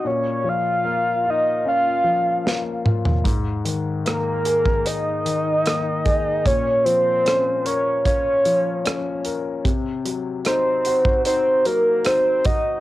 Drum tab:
HH |----------------|x-x-x-x-x-x-x-x-|x-x-x-x-x-x-x-x-|x-x-x-x-x-x-x-x-|
SD |------------o---|----r-------r---|----r-------r---|----r-------r---|
T2 |--------------o-|----------------|----------------|----------------|
FT |---------------o|----------------|----------------|----------------|
BD |----------------|o------o------o-|o-------o-------|o------o------o-|